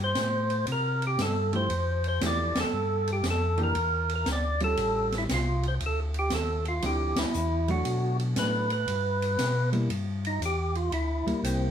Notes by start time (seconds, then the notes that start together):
Already playing: G2
0.04 C5
0.15 A2, snare, hi-hat pedal, ride
0.50 ride
0.67 C3, ride
0.72 A#4
1.02 ride
1.07 G4
1.18 G2 A4, snare, hi-hat pedal, ride
1.53 F3 A3 E4 G4 C5, ride
1.70 F2, ride
2.04 ride
2.08 C5
2.21 E2 F3 A3 E4 G4, snare, hi-hat pedal, ride
2.26 D5
2.55 E2, snare, ride
2.60 A4
2.73 G2
3.07 ride
3.13 G4
3.23 F2, snare, hi-hat pedal, ride
3.30 A4
3.58 E3 A#3 D4 G4, ride
3.63 A#4
3.75 E2, ride
4.09 ride
4.16 A#4
4.26 D2, snare, hi-hat pedal, ride
4.32 D5
4.60 G3 C#4 F4 A4, ride
4.77 A1, ride
5.12 snare, ride
5.18 E4
5.29 C2, snare, hi-hat pedal, ride
5.34 F4
5.63 ride
5.68 C5
5.80 D2, ride
5.86 A4
6.14 ride
6.19 G4
6.30 D#2, snare, hi-hat pedal, ride
6.35 A4
6.65 F4, ride
6.82 D2 D3 F3 C4 E4 G4, ride
7.16 D2 E4, snare, ride
7.34 E2, hi-hat pedal
7.68 F#3 A3 D4 F#4, ride
7.85 B2, ride
8.20 ride
8.36 A2 F#3 A3 D4 B4, snare, hi-hat pedal, ride
8.70 B4, ride
8.88 G2, ride
9.22 ride
9.38 B2, snare, hi-hat pedal, ride
9.73 G3 A#3 E4, ride
9.90 G2, ride
10.25 D#4, ride
10.40 E2, hi-hat pedal, ride
10.45 G4
10.75 F4, ride
10.91 D2 E4, ride
11.26 D2 G3 A#3 E4, ride
11.42 C2 C4, hi-hat pedal, ride